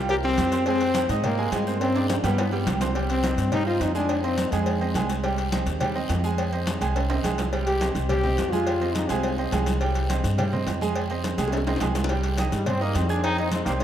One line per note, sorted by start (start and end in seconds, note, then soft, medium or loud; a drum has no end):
0.00 0.35 C2 loud
0.09 0.21 A#3 medium
0.09 0.16 G4 loud
0.09 0.21 A#4 medium
0.09 0.21 A#5 medium
0.09 cowbell loud
0.09 high conga soft
0.09 low agogo medium
0.09 long guiro medium
0.23 0.47 G3 medium
0.23 0.64 C4 loud
0.23 0.47 G4 medium
0.23 0.48 G5 medium
0.23 high conga soft
0.23 low agogo medium
0.37 1.04 F2 loud
0.37 cowbell medium
0.37 high conga medium
0.37 low timbale medium
0.37 low agogo loud
0.37 short guiro medium
0.52 0.64 C4 medium
0.52 0.64 C5 medium
0.52 0.65 C6 medium
0.52 cowbell medium
0.52 short guiro medium
0.66 0.78 G#3 medium
0.66 1.07 C4 loud
0.66 0.79 G#4 medium
0.66 0.79 G#5 medium
0.66 cowbell loud
0.66 high conga soft
0.66 low agogo medium
0.66 long guiro medium
0.81 1.05 C4 medium
0.81 1.05 C5 medium
0.81 1.05 C6 medium
0.81 cowbell medium
0.81 high conga soft
0.81 low agogo medium
0.95 cowbell medium
0.95 high conga loud
0.95 low timbale medium
0.95 low agogo loud
0.95 short guiro medium
1.09 1.49 G#2 loud
1.09 1.33 D#4 medium
1.09 1.33 D#5 medium
1.09 1.33 D#6 medium
1.09 cowbell medium
1.09 short guiro medium
1.24 1.50 A#3 loud
1.24 cowbell loud
1.24 high conga soft
1.24 low conga medium
1.24 low agogo loud
1.24 long guiro medium
1.38 1.62 G#3 medium
1.38 1.62 G#4 medium
1.38 1.62 G#5 medium
1.38 high conga soft
1.52 2.18 G2 medium
1.52 1.79 G#3 medium
1.52 cowbell medium
1.52 high conga soft
1.52 low timbale loud
1.52 low agogo loud
1.52 short guiro medium
1.67 1.90 C4 medium
1.67 1.90 C5 medium
1.67 1.90 C6 medium
1.67 short guiro medium
1.80 2.07 C4 loud
1.80 cowbell loud
1.80 high conga soft
1.80 high timbale medium
1.80 low agogo loud
1.80 long guiro medium
1.95 2.19 D4 medium
1.95 2.19 D5 medium
1.95 2.19 D6 medium
1.95 high conga soft
1.95 high timbale medium
1.95 low agogo medium
2.09 2.16 C4 medium
2.09 cowbell medium
2.09 high conga loud
2.09 high timbale medium
2.09 short guiro medium
2.23 2.63 G2 loud
2.23 2.36 G3 medium
2.23 2.64 B3 medium
2.23 2.36 G4 medium
2.23 2.36 G5 medium
2.23 cowbell medium
2.23 high conga soft
2.23 low timbale medium
2.23 low agogo loud
2.23 short guiro medium
2.38 2.50 B3 medium
2.38 2.50 B4 medium
2.38 2.50 B5 medium
2.38 cowbell loud
2.38 high conga soft
2.38 low timbale loud
2.38 low agogo medium
2.38 long guiro medium
2.52 2.76 G3 medium
2.52 2.76 G4 medium
2.52 2.76 G5 medium
2.52 high conga soft
2.52 low agogo medium
2.67 3.33 C2 loud
2.67 cowbell medium
2.67 high conga medium
2.67 low timbale medium
2.67 low agogo loud
2.67 short guiro medium
2.81 2.93 C4 medium
2.81 2.93 C5 medium
2.81 2.93 C6 medium
2.81 cowbell medium
2.81 high conga medium
2.81 low timbale loud
2.81 short guiro medium
2.95 3.19 G3 medium
2.95 3.19 G4 medium
2.95 3.19 G5 medium
2.95 cowbell loud
2.95 high conga soft
2.95 low agogo medium
2.95 long guiro medium
3.09 3.50 C4 medium
3.09 cowbell medium
3.09 high conga soft
3.09 low agogo medium
3.24 3.47 C4 medium
3.24 3.47 C5 medium
3.24 3.48 D#5 medium
3.24 cowbell medium
3.24 high conga loud
3.24 low timbale medium
3.24 low agogo loud
3.24 short guiro medium
3.37 3.77 G2 loud
3.37 cowbell medium
3.37 short guiro medium
3.52 3.64 G3 medium
3.52 3.66 D#4 loud
3.52 3.64 G4 medium
3.52 3.65 G5 medium
3.52 cowbell loud
3.52 high conga soft
3.52 low conga medium
3.52 low agogo loud
3.52 long guiro medium
3.66 3.90 C4 medium
3.66 3.83 F4 loud
3.66 3.90 C5 medium
3.66 3.90 D#5 medium
3.66 high conga soft
3.80 4.47 F2 loud
3.80 3.95 D#4 medium
3.80 cowbell medium
3.80 high conga soft
3.80 low timbale medium
3.80 low agogo medium
3.80 short guiro medium
3.95 4.19 G#3 loud
3.95 4.22 D4 medium
3.95 4.19 G#4 loud
3.95 4.19 G#5 medium
3.95 short guiro medium
4.09 cowbell loud
4.09 high conga soft
4.09 low agogo loud
4.09 long guiro medium
4.24 4.47 C4 medium
4.24 4.53 C4 loud
4.24 4.47 C5 medium
4.24 4.48 D#5 medium
4.24 high conga soft
4.24 low agogo medium
4.38 cowbell medium
4.38 high conga loud
4.38 low timbale medium
4.38 short guiro medium
4.52 4.92 F2 loud
4.52 5.09 G#3 medium
4.52 4.76 G#3 medium
4.52 4.76 G#4 medium
4.52 4.76 G#5 medium
4.52 cowbell medium
4.52 high conga soft
4.52 low agogo loud
4.52 short guiro medium
4.66 cowbell loud
4.66 high conga soft
4.66 low agogo medium
4.66 long guiro medium
4.81 4.93 C4 medium
4.81 4.93 C5 medium
4.81 4.93 D#5 medium
4.81 high conga soft
4.81 low agogo medium
4.94 5.61 C2 loud
4.94 5.19 G#3 medium
4.94 5.19 G#4 medium
4.94 5.19 G#5 medium
4.94 cowbell medium
4.94 high conga medium
4.94 low timbale medium
4.94 low agogo loud
4.94 short guiro medium
5.09 cowbell medium
5.09 short guiro medium
5.23 5.47 G3 medium
5.23 5.47 G4 medium
5.23 5.48 G5 medium
5.23 cowbell loud
5.23 high conga soft
5.23 low agogo medium
5.23 long guiro medium
5.38 cowbell medium
5.38 high conga soft
5.38 low agogo medium
5.52 5.76 C4 medium
5.52 5.76 C5 medium
5.52 5.76 D#5 medium
5.52 cowbell medium
5.52 high conga loud
5.52 low timbale medium
5.52 low agogo loud
5.52 short guiro medium
5.66 6.06 D#2 loud
5.66 cowbell medium
5.66 short guiro medium
5.80 5.93 G3 medium
5.80 5.93 G4 medium
5.80 5.93 G5 medium
5.80 cowbell loud
5.80 high conga soft
5.80 low conga medium
5.80 low agogo loud
5.80 long guiro medium
5.95 6.19 C4 medium
5.95 6.19 C5 medium
5.95 6.19 D#5 medium
5.95 high conga soft
6.09 6.76 F2 loud
6.09 cowbell medium
6.09 high conga soft
6.09 low timbale medium
6.09 low agogo medium
6.09 short guiro medium
6.24 6.47 G#3 medium
6.24 6.47 G#4 medium
6.24 6.48 G#5 loud
6.24 short guiro medium
6.38 cowbell loud
6.38 high conga soft
6.38 low agogo loud
6.38 long guiro medium
6.53 6.76 C4 medium
6.53 6.76 C5 medium
6.53 6.76 D#5 medium
6.53 high conga soft
6.53 low agogo medium
6.67 cowbell medium
6.67 high conga loud
6.67 low timbale medium
6.67 short guiro medium
6.81 7.21 C2 loud
6.81 7.05 G#3 medium
6.81 7.05 G#4 medium
6.81 7.05 G#5 medium
6.81 cowbell medium
6.81 high conga soft
6.81 low agogo loud
6.81 short guiro medium
6.96 cowbell loud
6.96 high conga soft
6.96 high timbale medium
6.96 low agogo medium
6.96 long guiro medium
7.10 7.21 C4 medium
7.10 7.22 C5 medium
7.10 7.22 D#5 medium
7.10 high conga soft
7.10 high timbale loud
7.10 low agogo medium
7.24 7.90 C2 medium
7.24 7.48 G#3 medium
7.24 7.48 G#4 medium
7.24 7.48 G#5 medium
7.24 cowbell medium
7.24 high conga medium
7.24 low timbale medium
7.24 low agogo loud
7.24 short guiro medium
7.38 cowbell medium
7.38 high conga medium
7.38 low timbale loud
7.38 short guiro medium
7.53 7.76 G3 medium
7.53 7.76 G4 medium
7.53 7.76 G5 medium
7.53 cowbell loud
7.53 high conga soft
7.53 low agogo medium
7.53 long guiro medium
7.67 7.93 G4 loud
7.67 cowbell medium
7.67 high conga soft
7.67 low agogo medium
7.81 8.05 C4 medium
7.81 8.05 C5 medium
7.81 8.05 D#5 medium
7.81 cowbell medium
7.81 high conga loud
7.81 low timbale medium
7.81 low agogo loud
7.81 short guiro medium
7.95 8.35 C2 loud
7.95 cowbell medium
7.95 short guiro medium
8.09 8.21 G3 medium
8.09 8.53 G4 loud
8.09 8.21 G4 medium
8.09 8.22 G5 medium
8.09 cowbell loud
8.09 high conga soft
8.09 low conga medium
8.09 low agogo loud
8.09 long guiro medium
8.23 8.47 C4 medium
8.23 8.47 C5 medium
8.23 8.47 D#5 medium
8.23 high conga soft
8.23 low conga medium
8.38 9.04 F2 medium
8.38 cowbell medium
8.38 high conga soft
8.38 low timbale medium
8.38 low agogo medium
8.38 short guiro medium
8.52 8.76 G#3 medium
8.52 8.97 F4 medium
8.52 8.76 G#4 medium
8.52 8.76 G#5 medium
8.52 high conga medium
8.52 short guiro medium
8.67 cowbell loud
8.67 high conga soft
8.67 low agogo loud
8.67 long guiro medium
8.81 9.04 C4 medium
8.81 9.05 C5 medium
8.81 9.05 D#5 medium
8.81 high conga soft
8.81 low agogo medium
8.95 9.12 D#4 medium
8.95 cowbell medium
8.95 high conga loud
8.95 low timbale medium
8.95 short guiro medium
9.09 9.49 C2 medium
9.09 9.33 G#3 medium
9.09 9.38 C4 medium
9.09 9.33 G#4 medium
9.09 9.33 G#5 medium
9.09 cowbell medium
9.09 high conga soft
9.09 low agogo loud
9.09 short guiro medium
9.23 cowbell loud
9.23 high conga soft
9.23 low agogo medium
9.23 long guiro medium
9.38 9.50 C4 medium
9.38 9.50 C5 medium
9.38 9.50 D#5 medium
9.38 high conga soft
9.38 low agogo medium
9.52 10.18 C2 loud
9.52 9.76 G#3 medium
9.52 9.76 G#4 medium
9.52 9.76 G#5 medium
9.52 cowbell medium
9.52 high conga medium
9.52 low timbale medium
9.52 low agogo loud
9.52 short guiro medium
9.66 cowbell medium
9.66 high conga medium
9.66 short guiro medium
9.81 10.05 G3 medium
9.81 10.05 G4 medium
9.81 10.05 G5 medium
9.81 cowbell loud
9.81 high conga soft
9.81 low agogo medium
9.81 long guiro medium
9.95 cowbell medium
9.95 high conga soft
9.95 low agogo medium
10.10 10.33 C4 medium
10.10 10.34 C5 medium
10.10 10.34 D#5 medium
10.10 cowbell medium
10.10 high conga loud
10.10 low timbale medium
10.10 low agogo loud
10.10 short guiro medium
10.24 10.64 G2 loud
10.24 cowbell medium
10.24 short guiro medium
10.38 10.50 G3 medium
10.38 10.50 G4 medium
10.38 10.50 G5 medium
10.38 cowbell loud
10.38 high conga soft
10.38 low conga medium
10.38 low agogo loud
10.38 long guiro medium
10.52 10.76 C4 medium
10.52 10.76 C5 medium
10.52 10.76 D#5 medium
10.52 high conga soft
10.52 low conga medium
10.66 11.32 F2 medium
10.66 cowbell medium
10.66 high conga soft
10.66 low timbale medium
10.66 low agogo medium
10.66 short guiro medium
10.81 11.05 G#3 loud
10.81 11.05 G#4 loud
10.81 11.05 G#5 loud
10.81 high conga medium
10.81 short guiro medium
10.96 cowbell loud
10.96 low agogo loud
10.96 long guiro medium
11.10 11.33 C4 medium
11.10 11.33 C5 medium
11.10 11.34 D#5 medium
11.10 high conga soft
11.10 low agogo medium
11.24 cowbell medium
11.24 high conga loud
11.24 low timbale medium
11.24 short guiro medium
11.38 11.78 C2 loud
11.38 11.62 G#3 medium
11.38 11.62 G#4 medium
11.38 11.62 G#5 medium
11.38 cowbell medium
11.38 high bongo medium
11.38 high conga soft
11.38 low agogo loud
11.38 short guiro medium
11.48 high bongo medium
11.52 cowbell loud
11.52 high conga soft
11.52 high timbale medium
11.52 low agogo medium
11.52 long guiro medium
11.57 high bongo medium
11.67 11.79 C4 medium
11.67 11.79 C5 medium
11.67 11.79 D#5 medium
11.67 low bongo loud
11.67 high conga soft
11.67 high timbale medium
11.67 low agogo loud
11.76 low bongo medium
11.81 12.47 C2 loud
11.81 12.05 G#3 medium
11.81 12.05 G#4 medium
11.81 12.05 G#5 medium
11.81 cowbell medium
11.81 high conga medium
11.81 low timbale loud
11.81 low agogo loud
11.81 short guiro medium
11.95 cowbell medium
11.95 low bongo medium
11.95 low timbale loud
11.95 short guiro medium
12.04 low bongo loud
12.09 12.33 G3 medium
12.09 12.33 G4 medium
12.09 12.33 G5 medium
12.09 cowbell loud
12.09 high conga soft
12.09 low agogo medium
12.09 long guiro medium
12.23 cowbell medium
12.23 high conga soft
12.23 low agogo medium
12.37 12.61 D#4 medium
12.37 12.62 D#5 medium
12.37 12.62 D#6 medium
12.37 cowbell medium
12.37 high conga loud
12.37 low timbale medium
12.37 low agogo loud
12.37 short guiro medium
12.52 12.92 G2 loud
12.52 12.67 D#3 medium
12.52 12.66 G3 medium
12.52 cowbell medium
12.52 short guiro medium
12.66 12.81 G3 medium
12.66 12.78 C4 medium
12.66 12.81 C4 loud
12.66 12.78 C5 medium
12.66 12.78 C6 medium
12.66 cowbell loud
12.66 high conga soft
12.66 low conga medium
12.66 low agogo loud
12.66 long guiro medium
12.81 12.96 G3 medium
12.81 12.95 A#3 loud
12.81 13.04 D#4 medium
12.81 13.04 D#5 medium
12.81 13.04 D#6 medium
12.81 high conga soft
12.95 13.61 F2 loud
12.95 13.09 G3 medium
12.95 13.09 C4 medium
12.95 cowbell medium
12.95 high conga soft
12.95 low timbale medium
12.95 low agogo medium
12.95 short guiro medium
13.09 13.25 A#3 medium
13.09 13.24 D4 loud
13.09 13.33 G#4 medium
13.09 13.33 G#5 medium
13.09 13.33 G#6 medium
13.09 short guiro medium
13.23 13.37 C4 medium
13.23 13.36 D#4 loud
13.23 cowbell loud
13.23 high conga soft
13.23 low agogo loud
13.23 long guiro medium
13.38 13.50 C4 medium
13.38 13.51 D#4 loud
13.38 13.61 D#4 medium
13.38 13.62 D#5 medium
13.38 13.62 D#6 medium
13.38 high conga soft
13.38 low agogo medium
13.51 13.66 G#3 medium
13.51 13.65 C4 medium
13.51 cowbell medium
13.51 high conga loud
13.51 low timbale medium
13.51 short guiro medium
13.65 13.84 C2 loud
13.65 13.73 G3 medium
13.65 13.72 A#3 medium
13.65 13.78 C4 medium
13.65 13.78 C5 medium
13.65 13.78 C6 medium
13.65 cowbell medium
13.65 high conga soft
13.65 low agogo loud
13.65 short guiro medium
13.80 13.84 F3 medium
13.80 13.84 G#3 medium
13.80 13.84 D#4 medium
13.80 cowbell loud
13.80 high conga soft
13.80 low agogo medium
13.80 long guiro medium